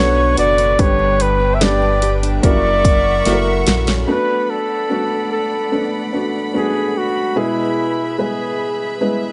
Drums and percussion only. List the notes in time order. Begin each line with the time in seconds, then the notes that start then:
0.37 open hi-hat
0.58 open hi-hat
0.79 kick, open hi-hat
1.20 open hi-hat
1.61 snare, open hi-hat
2.02 open hi-hat
2.23 open hi-hat
2.43 kick, open hi-hat
2.85 kick, open hi-hat
3.25 snare, open hi-hat
3.67 snare, open hi-hat
3.87 snare, open hi-hat